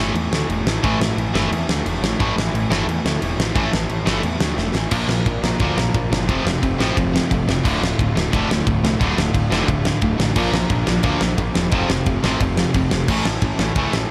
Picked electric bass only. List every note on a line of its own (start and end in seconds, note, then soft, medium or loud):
0.00 0.10 G1 loud
0.14 0.27 E2 loud
0.32 0.44 D2 medium
0.49 0.61 E1 medium
0.66 0.78 A1 medium
0.84 0.96 A1 loud
0.99 1.12 A1 medium
1.17 1.29 A1 medium
1.34 1.47 G1 loud
1.51 1.64 E2 loud
1.69 1.81 D2 medium
1.86 1.98 E1 medium
2.02 2.15 A1 medium
2.20 2.32 A1 loud
2.37 2.49 A1 medium
2.53 2.66 A1 medium
2.70 2.83 G1 loud
2.87 3.00 E2 loud
3.04 3.17 D2 medium
3.22 3.34 E1 medium
3.38 3.51 A1 medium
3.56 3.68 A1 loud
3.73 3.85 A1 medium
3.90 4.02 A1 medium
4.07 4.19 G1 loud
4.23 4.36 E2 loud
4.40 4.53 D2 medium
4.57 4.70 E1 medium
4.73 4.86 A1 medium
4.92 5.03 A#1 medium
5.08 5.19 A#1 medium
5.26 5.37 A#1 medium
5.43 5.54 A#1 loud
5.60 5.71 D2 medium
5.76 5.88 A#1 medium
5.94 6.05 A#1 medium
6.11 6.29 G1 medium
6.29 6.40 F1 loud
6.45 6.56 F1 loud
6.63 6.74 F1 medium
6.79 6.90 A1 loud
6.97 7.19 F1 loud
7.31 7.42 F1 loud
7.48 7.59 F1 loud
7.65 7.76 D1 loud
7.81 7.92 D1 medium
7.99 8.10 D1 medium
8.16 8.27 D1 loud
8.33 8.44 F1 loud
8.49 8.60 D1 medium
8.67 8.78 D1 medium
8.83 8.94 C2 medium
9.00 9.12 D1 medium
9.17 9.29 D1 medium
9.34 9.46 D1 medium
9.51 9.62 F1 loud
9.69 9.91 D1 medium
10.02 10.13 D1 medium
10.19 10.30 A1 medium
10.36 10.47 A#1 medium
10.52 10.64 A#1 medium
10.70 10.81 A#1 loud
10.87 10.98 A#1 loud
11.04 11.15 D2 medium
11.21 11.33 A#1 medium
11.38 11.49 A#1 medium
11.56 11.67 E1 medium
11.72 11.83 F1 loud
11.89 12.00 F1 medium
12.06 12.17 F1 medium
12.24 12.35 A1 medium
12.41 12.63 F1 loud
12.75 12.86 F1 medium
12.92 13.03 F1 loud
13.08 13.20 A1 loud
13.25 13.36 A1 medium
13.42 13.53 A1 loud
13.58 13.69 A1 loud
13.76 13.87 C#2 loud
13.92 14.03 A1 medium